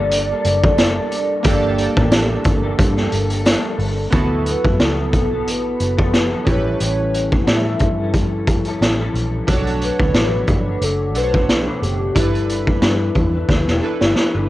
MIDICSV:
0, 0, Header, 1, 7, 480
1, 0, Start_track
1, 0, Key_signature, 2, "major"
1, 0, Tempo, 668896
1, 1043, Time_signature, 4, 2, 24, 8
1, 10399, End_track
2, 0, Start_track
2, 0, Title_t, "Soft synth lead"
2, 0, Program_c, 0, 80
2, 0, Note_on_c, 0, 74, 97
2, 2486, Note_off_c, 0, 74, 0
2, 3222, Note_on_c, 0, 71, 78
2, 3467, Note_on_c, 0, 69, 88
2, 3477, Note_off_c, 0, 71, 0
2, 3947, Note_on_c, 0, 71, 96
2, 3957, Note_off_c, 0, 69, 0
2, 4674, Note_on_c, 0, 73, 96
2, 4685, Note_off_c, 0, 71, 0
2, 4898, Note_off_c, 0, 73, 0
2, 4914, Note_on_c, 0, 73, 107
2, 5303, Note_off_c, 0, 73, 0
2, 5337, Note_on_c, 0, 78, 66
2, 5391, Note_on_c, 0, 76, 106
2, 5402, Note_off_c, 0, 78, 0
2, 5856, Note_off_c, 0, 76, 0
2, 7061, Note_on_c, 0, 71, 116
2, 7775, Note_on_c, 0, 69, 94
2, 7786, Note_off_c, 0, 71, 0
2, 8015, Note_on_c, 0, 71, 97
2, 8026, Note_off_c, 0, 69, 0
2, 8246, Note_off_c, 0, 71, 0
2, 8251, Note_on_c, 0, 71, 94
2, 8487, Note_on_c, 0, 67, 86
2, 8498, Note_off_c, 0, 71, 0
2, 8965, Note_off_c, 0, 67, 0
2, 10399, End_track
3, 0, Start_track
3, 0, Title_t, "Synth keys"
3, 0, Program_c, 1, 88
3, 0, Control_c, 1, 64, 127
3, 0, Note_on_c, 1, 58, 70
3, 0, Note_on_c, 1, 62, 63
3, 0, Note_on_c, 1, 67, 65
3, 0, Note_on_c, 1, 69, 77
3, 1005, Note_off_c, 1, 58, 0
3, 1010, Note_off_c, 1, 62, 0
3, 1017, Note_off_c, 1, 67, 0
3, 1023, Note_off_c, 1, 69, 0
3, 1027, Note_on_c, 1, 58, 82
3, 1037, Note_on_c, 1, 62, 72
3, 1052, Note_on_c, 1, 67, 75
3, 1061, Note_on_c, 1, 69, 90
3, 2924, Note_off_c, 1, 58, 0
3, 2929, Note_off_c, 1, 62, 0
3, 2937, Note_off_c, 1, 67, 0
3, 2941, Note_off_c, 1, 69, 0
3, 2946, Note_on_c, 1, 59, 73
3, 2962, Note_on_c, 1, 64, 65
3, 2971, Control_c, 1, 64, 0
3, 2974, Note_on_c, 1, 66, 65
3, 2984, Note_on_c, 1, 69, 75
3, 3089, Control_c, 1, 64, 127
3, 4605, Note_off_c, 1, 59, 0
3, 4613, Note_off_c, 1, 64, 0
3, 4619, Note_off_c, 1, 66, 0
3, 4624, Note_off_c, 1, 69, 0
3, 4627, Note_on_c, 1, 61, 59
3, 4641, Note_on_c, 1, 64, 56
3, 4649, Control_c, 1, 64, 0
3, 4651, Note_on_c, 1, 67, 57
3, 4664, Note_on_c, 1, 71, 67
3, 4762, Control_c, 1, 64, 127
3, 6526, Note_off_c, 1, 61, 0
3, 6533, Note_off_c, 1, 64, 0
3, 6538, Note_off_c, 1, 67, 0
3, 6545, Note_off_c, 1, 71, 0
3, 6796, Note_on_c, 1, 62, 78
3, 6802, Note_on_c, 1, 66, 71
3, 6810, Control_c, 1, 64, 0
3, 6818, Note_on_c, 1, 69, 69
3, 6831, Note_on_c, 1, 73, 82
3, 6944, Control_c, 1, 64, 127
3, 7976, Note_off_c, 1, 62, 0
3, 7979, Note_off_c, 1, 66, 0
3, 7987, Note_off_c, 1, 69, 0
3, 7994, Note_off_c, 1, 73, 0
3, 7998, Note_on_c, 1, 62, 45
3, 8006, Note_on_c, 1, 78, 44
3, 8008, Note_on_c, 1, 69, 45
3, 8019, Note_on_c, 1, 72, 44
3, 8062, Note_off_c, 1, 72, 0
3, 8063, Note_on_c, 1, 73, 53
3, 8708, Note_off_c, 1, 62, 0
3, 8716, Note_on_c, 1, 62, 60
3, 8724, Note_off_c, 1, 78, 0
3, 8726, Note_off_c, 1, 69, 0
3, 8727, Note_on_c, 1, 64, 58
3, 8731, Control_c, 1, 64, 0
3, 8736, Note_on_c, 1, 69, 53
3, 8751, Note_on_c, 1, 71, 65
3, 8753, Note_off_c, 1, 73, 0
3, 8865, Control_c, 1, 64, 127
3, 9896, Note_off_c, 1, 62, 0
3, 9902, Note_off_c, 1, 64, 0
3, 9906, Note_off_c, 1, 69, 0
3, 9913, Note_off_c, 1, 71, 0
3, 9921, Note_on_c, 1, 62, 56
3, 9924, Note_on_c, 1, 64, 47
3, 9927, Note_on_c, 1, 69, 47
3, 9937, Note_on_c, 1, 71, 59
3, 10399, Note_off_c, 1, 62, 0
3, 10399, Note_off_c, 1, 64, 0
3, 10399, Note_off_c, 1, 69, 0
3, 10399, Note_off_c, 1, 71, 0
3, 10399, End_track
4, 0, Start_track
4, 0, Title_t, "Clean electric guitar"
4, 0, Program_c, 2, 27
4, 0, Note_on_c, 2, 43, 63
4, 0, Note_on_c, 2, 50, 65
4, 0, Note_on_c, 2, 55, 68
4, 0, Note_on_c, 2, 58, 64
4, 0, Note_on_c, 2, 62, 71
4, 0, Note_on_c, 2, 69, 76
4, 208, Note_off_c, 2, 69, 0
4, 214, Note_off_c, 2, 62, 0
4, 216, Note_on_c, 2, 69, 57
4, 218, Note_off_c, 2, 55, 0
4, 218, Note_off_c, 2, 58, 0
4, 221, Note_off_c, 2, 43, 0
4, 221, Note_off_c, 2, 50, 0
4, 223, Note_on_c, 2, 62, 52
4, 230, Note_on_c, 2, 58, 51
4, 236, Note_on_c, 2, 55, 45
4, 545, Note_off_c, 2, 55, 0
4, 553, Note_on_c, 2, 55, 64
4, 555, Note_off_c, 2, 58, 0
4, 562, Note_off_c, 2, 62, 0
4, 564, Note_off_c, 2, 69, 0
4, 564, Note_on_c, 2, 58, 76
4, 571, Note_on_c, 2, 62, 74
4, 579, Note_on_c, 2, 69, 81
4, 1038, Note_off_c, 2, 55, 0
4, 1040, Note_on_c, 2, 43, 83
4, 1041, Note_off_c, 2, 58, 0
4, 1042, Note_on_c, 2, 50, 97
4, 1045, Note_on_c, 2, 55, 92
4, 1048, Note_off_c, 2, 62, 0
4, 1050, Note_on_c, 2, 58, 96
4, 1051, Note_on_c, 2, 62, 108
4, 1052, Note_off_c, 2, 69, 0
4, 1055, Note_on_c, 2, 69, 103
4, 1402, Note_off_c, 2, 69, 0
4, 1409, Note_off_c, 2, 62, 0
4, 1411, Note_off_c, 2, 58, 0
4, 1411, Note_on_c, 2, 69, 79
4, 1413, Note_off_c, 2, 43, 0
4, 1413, Note_off_c, 2, 55, 0
4, 1414, Note_off_c, 2, 50, 0
4, 1418, Note_on_c, 2, 62, 77
4, 1420, Note_on_c, 2, 58, 84
4, 1421, Note_on_c, 2, 55, 78
4, 1425, Note_on_c, 2, 50, 66
4, 1427, Note_on_c, 2, 43, 69
4, 1882, Note_off_c, 2, 58, 0
4, 1883, Note_off_c, 2, 69, 0
4, 1886, Note_on_c, 2, 69, 84
4, 1887, Note_off_c, 2, 55, 0
4, 1889, Note_off_c, 2, 43, 0
4, 1889, Note_off_c, 2, 62, 0
4, 1891, Note_on_c, 2, 58, 73
4, 1892, Note_on_c, 2, 62, 73
4, 1894, Note_off_c, 2, 50, 0
4, 1896, Note_on_c, 2, 55, 73
4, 1897, Note_on_c, 2, 50, 68
4, 1898, Note_on_c, 2, 43, 70
4, 2112, Note_off_c, 2, 69, 0
4, 2121, Note_on_c, 2, 69, 56
4, 2125, Note_off_c, 2, 62, 0
4, 2131, Note_off_c, 2, 58, 0
4, 2134, Note_on_c, 2, 62, 63
4, 2135, Note_off_c, 2, 50, 0
4, 2135, Note_off_c, 2, 55, 0
4, 2136, Note_off_c, 2, 43, 0
4, 2139, Note_on_c, 2, 58, 55
4, 2147, Note_on_c, 2, 55, 55
4, 2466, Note_off_c, 2, 55, 0
4, 2470, Note_off_c, 2, 58, 0
4, 2475, Note_off_c, 2, 69, 0
4, 2475, Note_on_c, 2, 55, 68
4, 2479, Note_on_c, 2, 58, 71
4, 2481, Note_off_c, 2, 62, 0
4, 2490, Note_on_c, 2, 62, 70
4, 2497, Note_on_c, 2, 69, 79
4, 2957, Note_off_c, 2, 55, 0
4, 2960, Note_off_c, 2, 58, 0
4, 2960, Note_on_c, 2, 54, 58
4, 2968, Note_off_c, 2, 62, 0
4, 2968, Note_on_c, 2, 59, 64
4, 2971, Note_on_c, 2, 66, 59
4, 2974, Note_off_c, 2, 69, 0
4, 2977, Note_on_c, 2, 69, 69
4, 3438, Note_off_c, 2, 54, 0
4, 3444, Note_off_c, 2, 59, 0
4, 3445, Note_off_c, 2, 66, 0
4, 3446, Note_on_c, 2, 54, 66
4, 3452, Note_on_c, 2, 59, 73
4, 3457, Note_off_c, 2, 69, 0
4, 3457, Note_on_c, 2, 66, 77
4, 3460, Note_on_c, 2, 69, 75
4, 3804, Note_off_c, 2, 69, 0
4, 3813, Note_on_c, 2, 69, 48
4, 3815, Note_off_c, 2, 54, 0
4, 3815, Note_off_c, 2, 66, 0
4, 3818, Note_off_c, 2, 59, 0
4, 3823, Note_on_c, 2, 66, 42
4, 3832, Note_on_c, 2, 59, 44
4, 4283, Note_off_c, 2, 69, 0
4, 4286, Note_on_c, 2, 69, 50
4, 4288, Note_off_c, 2, 66, 0
4, 4297, Note_off_c, 2, 59, 0
4, 4297, Note_on_c, 2, 66, 47
4, 4306, Note_on_c, 2, 59, 41
4, 4522, Note_off_c, 2, 69, 0
4, 4525, Note_off_c, 2, 59, 0
4, 4525, Note_off_c, 2, 66, 0
4, 4531, Note_on_c, 2, 69, 64
4, 4534, Note_on_c, 2, 59, 50
4, 4534, Note_on_c, 2, 66, 60
4, 4542, Note_on_c, 2, 54, 56
4, 4547, Note_on_c, 2, 50, 54
4, 4638, Note_off_c, 2, 50, 0
4, 4640, Note_off_c, 2, 69, 0
4, 4641, Note_off_c, 2, 59, 0
4, 4641, Note_off_c, 2, 66, 0
4, 4641, Note_on_c, 2, 45, 70
4, 4641, Note_on_c, 2, 52, 65
4, 4643, Note_off_c, 2, 54, 0
4, 4646, Note_on_c, 2, 55, 74
4, 4647, Note_on_c, 2, 61, 70
4, 4650, Note_on_c, 2, 64, 79
4, 4652, Note_on_c, 2, 69, 74
4, 5346, Note_off_c, 2, 45, 0
4, 5352, Note_off_c, 2, 52, 0
4, 5354, Note_off_c, 2, 55, 0
4, 5354, Note_on_c, 2, 45, 74
4, 5359, Note_off_c, 2, 61, 0
4, 5360, Note_off_c, 2, 64, 0
4, 5361, Note_on_c, 2, 52, 73
4, 5362, Note_on_c, 2, 55, 77
4, 5365, Note_off_c, 2, 69, 0
4, 5368, Note_on_c, 2, 61, 72
4, 5368, Note_on_c, 2, 69, 72
4, 5369, Note_on_c, 2, 64, 75
4, 5723, Note_off_c, 2, 69, 0
4, 5730, Note_off_c, 2, 45, 0
4, 5731, Note_off_c, 2, 64, 0
4, 5731, Note_on_c, 2, 69, 52
4, 5733, Note_off_c, 2, 52, 0
4, 5734, Note_off_c, 2, 55, 0
4, 5734, Note_off_c, 2, 61, 0
4, 5739, Note_on_c, 2, 64, 47
4, 5742, Note_on_c, 2, 61, 40
4, 5749, Note_on_c, 2, 55, 42
4, 6210, Note_off_c, 2, 69, 0
4, 6211, Note_off_c, 2, 64, 0
4, 6213, Note_on_c, 2, 69, 55
4, 6218, Note_off_c, 2, 61, 0
4, 6220, Note_on_c, 2, 64, 52
4, 6222, Note_off_c, 2, 55, 0
4, 6227, Note_on_c, 2, 61, 49
4, 6233, Note_on_c, 2, 55, 41
4, 6447, Note_off_c, 2, 69, 0
4, 6448, Note_off_c, 2, 64, 0
4, 6451, Note_off_c, 2, 61, 0
4, 6453, Note_off_c, 2, 55, 0
4, 6456, Note_on_c, 2, 69, 69
4, 6457, Note_on_c, 2, 64, 64
4, 6459, Note_on_c, 2, 61, 63
4, 6462, Note_on_c, 2, 55, 64
4, 6468, Note_on_c, 2, 45, 68
4, 6468, Note_on_c, 2, 52, 62
4, 6795, Note_off_c, 2, 52, 0
4, 6797, Note_on_c, 2, 54, 59
4, 6802, Note_off_c, 2, 55, 0
4, 6803, Note_off_c, 2, 64, 0
4, 6803, Note_off_c, 2, 69, 0
4, 6805, Note_off_c, 2, 61, 0
4, 6805, Note_on_c, 2, 57, 70
4, 6809, Note_off_c, 2, 45, 0
4, 6811, Note_on_c, 2, 62, 68
4, 6819, Note_on_c, 2, 66, 67
4, 7277, Note_off_c, 2, 54, 0
4, 7279, Note_off_c, 2, 57, 0
4, 7281, Note_on_c, 2, 47, 77
4, 7286, Note_on_c, 2, 54, 69
4, 7288, Note_on_c, 2, 57, 75
4, 7291, Note_off_c, 2, 66, 0
4, 7293, Note_off_c, 2, 62, 0
4, 7295, Note_on_c, 2, 62, 75
4, 7298, Note_on_c, 2, 66, 78
4, 7641, Note_off_c, 2, 66, 0
4, 7650, Note_off_c, 2, 62, 0
4, 7650, Note_on_c, 2, 66, 50
4, 7654, Note_off_c, 2, 47, 0
4, 7656, Note_off_c, 2, 54, 0
4, 7657, Note_off_c, 2, 57, 0
4, 7658, Note_on_c, 2, 62, 48
4, 7673, Note_on_c, 2, 57, 38
4, 8115, Note_off_c, 2, 66, 0
4, 8124, Note_on_c, 2, 66, 57
4, 8133, Note_off_c, 2, 62, 0
4, 8136, Note_on_c, 2, 62, 49
4, 8138, Note_off_c, 2, 57, 0
4, 8147, Note_on_c, 2, 57, 39
4, 8366, Note_off_c, 2, 57, 0
4, 8366, Note_off_c, 2, 62, 0
4, 8370, Note_off_c, 2, 66, 0
4, 8374, Note_on_c, 2, 62, 65
4, 8375, Note_on_c, 2, 57, 59
4, 8383, Note_on_c, 2, 47, 55
4, 8719, Note_on_c, 2, 55, 55
4, 8721, Note_off_c, 2, 62, 0
4, 8723, Note_off_c, 2, 57, 0
4, 8727, Note_off_c, 2, 47, 0
4, 8730, Note_on_c, 2, 62, 64
4, 8735, Note_on_c, 2, 64, 62
4, 8739, Note_on_c, 2, 71, 59
4, 9190, Note_off_c, 2, 55, 0
4, 9199, Note_on_c, 2, 55, 78
4, 9200, Note_off_c, 2, 64, 0
4, 9201, Note_off_c, 2, 62, 0
4, 9204, Note_on_c, 2, 62, 84
4, 9209, Note_on_c, 2, 64, 81
4, 9212, Note_off_c, 2, 71, 0
4, 9215, Note_on_c, 2, 71, 92
4, 9558, Note_off_c, 2, 71, 0
4, 9566, Note_off_c, 2, 64, 0
4, 9566, Note_on_c, 2, 71, 53
4, 9573, Note_off_c, 2, 55, 0
4, 9574, Note_on_c, 2, 64, 49
4, 9576, Note_off_c, 2, 62, 0
4, 9586, Note_on_c, 2, 62, 49
4, 10046, Note_off_c, 2, 71, 0
4, 10049, Note_on_c, 2, 71, 53
4, 10055, Note_off_c, 2, 64, 0
4, 10063, Note_on_c, 2, 64, 51
4, 10066, Note_off_c, 2, 62, 0
4, 10069, Note_on_c, 2, 62, 48
4, 10287, Note_off_c, 2, 71, 0
4, 10291, Note_off_c, 2, 62, 0
4, 10292, Note_off_c, 2, 64, 0
4, 10296, Note_on_c, 2, 71, 66
4, 10300, Note_on_c, 2, 62, 67
4, 10301, Note_on_c, 2, 64, 65
4, 10309, Note_on_c, 2, 55, 57
4, 10399, Note_off_c, 2, 55, 0
4, 10399, Note_off_c, 2, 62, 0
4, 10399, Note_off_c, 2, 64, 0
4, 10399, Note_off_c, 2, 71, 0
4, 10399, End_track
5, 0, Start_track
5, 0, Title_t, "Picked electric bass"
5, 0, Program_c, 3, 34
5, 0, Note_on_c, 3, 31, 97
5, 226, Note_off_c, 3, 31, 0
5, 322, Note_on_c, 3, 30, 86
5, 706, Note_off_c, 3, 30, 0
5, 1043, Note_on_c, 3, 31, 96
5, 1340, Note_off_c, 3, 31, 0
5, 1416, Note_on_c, 3, 33, 89
5, 1694, Note_off_c, 3, 33, 0
5, 1762, Note_on_c, 3, 31, 91
5, 1954, Note_off_c, 3, 31, 0
5, 2002, Note_on_c, 3, 43, 113
5, 2194, Note_off_c, 3, 43, 0
5, 2241, Note_on_c, 3, 31, 83
5, 2538, Note_off_c, 3, 31, 0
5, 2717, Note_on_c, 3, 31, 92
5, 2911, Note_off_c, 3, 31, 0
5, 2962, Note_on_c, 3, 38, 86
5, 3259, Note_off_c, 3, 38, 0
5, 3336, Note_on_c, 3, 42, 72
5, 3421, Note_off_c, 3, 42, 0
5, 3444, Note_on_c, 3, 37, 85
5, 3685, Note_off_c, 3, 37, 0
5, 3685, Note_on_c, 3, 35, 67
5, 3926, Note_off_c, 3, 35, 0
5, 3926, Note_on_c, 3, 33, 88
5, 4116, Note_off_c, 3, 33, 0
5, 4163, Note_on_c, 3, 30, 67
5, 4546, Note_off_c, 3, 30, 0
5, 4641, Note_on_c, 3, 33, 80
5, 4833, Note_off_c, 3, 33, 0
5, 4884, Note_on_c, 3, 33, 91
5, 5267, Note_off_c, 3, 33, 0
5, 5361, Note_on_c, 3, 45, 92
5, 5553, Note_off_c, 3, 45, 0
5, 5603, Note_on_c, 3, 43, 76
5, 6294, Note_off_c, 3, 43, 0
5, 6322, Note_on_c, 3, 33, 85
5, 6514, Note_off_c, 3, 33, 0
5, 6559, Note_on_c, 3, 34, 80
5, 6752, Note_off_c, 3, 34, 0
5, 6807, Note_on_c, 3, 35, 90
5, 7103, Note_off_c, 3, 35, 0
5, 7177, Note_on_c, 3, 38, 84
5, 7262, Note_off_c, 3, 38, 0
5, 7278, Note_on_c, 3, 33, 88
5, 7472, Note_off_c, 3, 33, 0
5, 7523, Note_on_c, 3, 31, 74
5, 7715, Note_off_c, 3, 31, 0
5, 7760, Note_on_c, 3, 30, 93
5, 7998, Note_off_c, 3, 30, 0
5, 7998, Note_on_c, 3, 35, 74
5, 8384, Note_off_c, 3, 35, 0
5, 8483, Note_on_c, 3, 30, 82
5, 8675, Note_off_c, 3, 30, 0
5, 8723, Note_on_c, 3, 31, 88
5, 9107, Note_off_c, 3, 31, 0
5, 9200, Note_on_c, 3, 43, 91
5, 9393, Note_off_c, 3, 43, 0
5, 9442, Note_on_c, 3, 40, 82
5, 9634, Note_off_c, 3, 40, 0
5, 9678, Note_on_c, 3, 38, 86
5, 9786, Note_off_c, 3, 38, 0
5, 9816, Note_on_c, 3, 28, 81
5, 9902, Note_off_c, 3, 28, 0
5, 10058, Note_on_c, 3, 31, 76
5, 10143, Note_off_c, 3, 31, 0
5, 10296, Note_on_c, 3, 31, 77
5, 10382, Note_off_c, 3, 31, 0
5, 10399, End_track
6, 0, Start_track
6, 0, Title_t, "Muted picked electric bass strokes"
6, 10163, Note_on_c, 9, 29, 41
6, 10235, Note_off_c, 9, 29, 0
6, 10399, End_track
7, 0, Start_track
7, 0, Title_t, "Drums"
7, 81, Note_on_c, 9, 42, 94
7, 152, Note_off_c, 9, 42, 0
7, 319, Note_on_c, 9, 42, 77
7, 390, Note_off_c, 9, 42, 0
7, 456, Note_on_c, 9, 36, 104
7, 528, Note_off_c, 9, 36, 0
7, 561, Note_on_c, 9, 54, 92
7, 562, Note_on_c, 9, 38, 118
7, 564, Note_on_c, 9, 42, 91
7, 632, Note_off_c, 9, 54, 0
7, 634, Note_off_c, 9, 38, 0
7, 636, Note_off_c, 9, 42, 0
7, 801, Note_on_c, 9, 42, 68
7, 873, Note_off_c, 9, 42, 0
7, 1035, Note_on_c, 9, 42, 113
7, 1040, Note_on_c, 9, 36, 111
7, 1107, Note_off_c, 9, 42, 0
7, 1112, Note_off_c, 9, 36, 0
7, 1279, Note_on_c, 9, 42, 70
7, 1351, Note_off_c, 9, 42, 0
7, 1413, Note_on_c, 9, 36, 98
7, 1485, Note_off_c, 9, 36, 0
7, 1519, Note_on_c, 9, 42, 87
7, 1519, Note_on_c, 9, 54, 90
7, 1520, Note_on_c, 9, 38, 122
7, 1591, Note_off_c, 9, 42, 0
7, 1591, Note_off_c, 9, 54, 0
7, 1592, Note_off_c, 9, 38, 0
7, 1752, Note_on_c, 9, 42, 68
7, 1760, Note_on_c, 9, 36, 97
7, 1824, Note_off_c, 9, 42, 0
7, 1832, Note_off_c, 9, 36, 0
7, 2001, Note_on_c, 9, 36, 99
7, 2006, Note_on_c, 9, 42, 101
7, 2072, Note_off_c, 9, 36, 0
7, 2078, Note_off_c, 9, 42, 0
7, 2130, Note_on_c, 9, 38, 35
7, 2202, Note_off_c, 9, 38, 0
7, 2238, Note_on_c, 9, 42, 74
7, 2310, Note_off_c, 9, 42, 0
7, 2368, Note_on_c, 9, 42, 58
7, 2439, Note_off_c, 9, 42, 0
7, 2480, Note_on_c, 9, 54, 86
7, 2484, Note_on_c, 9, 38, 109
7, 2486, Note_on_c, 9, 42, 102
7, 2552, Note_off_c, 9, 54, 0
7, 2556, Note_off_c, 9, 38, 0
7, 2558, Note_off_c, 9, 42, 0
7, 2723, Note_on_c, 9, 46, 50
7, 2795, Note_off_c, 9, 46, 0
7, 2958, Note_on_c, 9, 42, 97
7, 2962, Note_on_c, 9, 36, 98
7, 3030, Note_off_c, 9, 42, 0
7, 3033, Note_off_c, 9, 36, 0
7, 3202, Note_on_c, 9, 42, 69
7, 3273, Note_off_c, 9, 42, 0
7, 3334, Note_on_c, 9, 36, 83
7, 3405, Note_off_c, 9, 36, 0
7, 3442, Note_on_c, 9, 42, 70
7, 3443, Note_on_c, 9, 38, 100
7, 3514, Note_off_c, 9, 38, 0
7, 3514, Note_off_c, 9, 42, 0
7, 3680, Note_on_c, 9, 42, 61
7, 3682, Note_on_c, 9, 36, 81
7, 3752, Note_off_c, 9, 42, 0
7, 3754, Note_off_c, 9, 36, 0
7, 3928, Note_on_c, 9, 42, 78
7, 3999, Note_off_c, 9, 42, 0
7, 4159, Note_on_c, 9, 42, 64
7, 4231, Note_off_c, 9, 42, 0
7, 4294, Note_on_c, 9, 36, 98
7, 4366, Note_off_c, 9, 36, 0
7, 4403, Note_on_c, 9, 38, 91
7, 4405, Note_on_c, 9, 42, 82
7, 4475, Note_off_c, 9, 38, 0
7, 4477, Note_off_c, 9, 42, 0
7, 4640, Note_on_c, 9, 36, 95
7, 4641, Note_on_c, 9, 42, 59
7, 4712, Note_off_c, 9, 36, 0
7, 4713, Note_off_c, 9, 42, 0
7, 4880, Note_on_c, 9, 42, 92
7, 4952, Note_off_c, 9, 42, 0
7, 5125, Note_on_c, 9, 42, 70
7, 5197, Note_off_c, 9, 42, 0
7, 5253, Note_on_c, 9, 36, 83
7, 5325, Note_off_c, 9, 36, 0
7, 5361, Note_on_c, 9, 42, 70
7, 5362, Note_on_c, 9, 38, 103
7, 5433, Note_off_c, 9, 42, 0
7, 5434, Note_off_c, 9, 38, 0
7, 5592, Note_on_c, 9, 42, 61
7, 5600, Note_on_c, 9, 36, 83
7, 5664, Note_off_c, 9, 42, 0
7, 5672, Note_off_c, 9, 36, 0
7, 5840, Note_on_c, 9, 36, 87
7, 5841, Note_on_c, 9, 42, 83
7, 5912, Note_off_c, 9, 36, 0
7, 5913, Note_off_c, 9, 42, 0
7, 6078, Note_on_c, 9, 42, 68
7, 6081, Note_on_c, 9, 36, 87
7, 6150, Note_off_c, 9, 42, 0
7, 6152, Note_off_c, 9, 36, 0
7, 6205, Note_on_c, 9, 42, 53
7, 6277, Note_off_c, 9, 42, 0
7, 6330, Note_on_c, 9, 38, 92
7, 6332, Note_on_c, 9, 42, 89
7, 6401, Note_off_c, 9, 38, 0
7, 6404, Note_off_c, 9, 42, 0
7, 6568, Note_on_c, 9, 42, 54
7, 6640, Note_off_c, 9, 42, 0
7, 6803, Note_on_c, 9, 36, 98
7, 6803, Note_on_c, 9, 42, 95
7, 6875, Note_off_c, 9, 36, 0
7, 6875, Note_off_c, 9, 42, 0
7, 6940, Note_on_c, 9, 42, 45
7, 7012, Note_off_c, 9, 42, 0
7, 7044, Note_on_c, 9, 42, 70
7, 7116, Note_off_c, 9, 42, 0
7, 7174, Note_on_c, 9, 36, 86
7, 7246, Note_off_c, 9, 36, 0
7, 7280, Note_on_c, 9, 42, 71
7, 7281, Note_on_c, 9, 38, 111
7, 7352, Note_off_c, 9, 38, 0
7, 7352, Note_off_c, 9, 42, 0
7, 7517, Note_on_c, 9, 42, 61
7, 7521, Note_on_c, 9, 36, 83
7, 7588, Note_off_c, 9, 42, 0
7, 7593, Note_off_c, 9, 36, 0
7, 7762, Note_on_c, 9, 42, 90
7, 7834, Note_off_c, 9, 42, 0
7, 7999, Note_on_c, 9, 42, 62
7, 8071, Note_off_c, 9, 42, 0
7, 8137, Note_on_c, 9, 36, 91
7, 8209, Note_off_c, 9, 36, 0
7, 8246, Note_on_c, 9, 38, 93
7, 8248, Note_on_c, 9, 42, 86
7, 8318, Note_off_c, 9, 38, 0
7, 8320, Note_off_c, 9, 42, 0
7, 8489, Note_on_c, 9, 42, 58
7, 8561, Note_off_c, 9, 42, 0
7, 8724, Note_on_c, 9, 36, 98
7, 8726, Note_on_c, 9, 42, 99
7, 8795, Note_off_c, 9, 36, 0
7, 8798, Note_off_c, 9, 42, 0
7, 8862, Note_on_c, 9, 42, 47
7, 8933, Note_off_c, 9, 42, 0
7, 8966, Note_on_c, 9, 42, 65
7, 9037, Note_off_c, 9, 42, 0
7, 9094, Note_on_c, 9, 36, 81
7, 9166, Note_off_c, 9, 36, 0
7, 9198, Note_on_c, 9, 42, 72
7, 9199, Note_on_c, 9, 38, 101
7, 9270, Note_off_c, 9, 42, 0
7, 9271, Note_off_c, 9, 38, 0
7, 9434, Note_on_c, 9, 42, 60
7, 9439, Note_on_c, 9, 36, 87
7, 9506, Note_off_c, 9, 42, 0
7, 9511, Note_off_c, 9, 36, 0
7, 9678, Note_on_c, 9, 36, 87
7, 9683, Note_on_c, 9, 38, 49
7, 9750, Note_off_c, 9, 36, 0
7, 9755, Note_off_c, 9, 38, 0
7, 9815, Note_on_c, 9, 38, 49
7, 9887, Note_off_c, 9, 38, 0
7, 10053, Note_on_c, 9, 38, 62
7, 10125, Note_off_c, 9, 38, 0
7, 10160, Note_on_c, 9, 38, 72
7, 10231, Note_off_c, 9, 38, 0
7, 10399, End_track
0, 0, End_of_file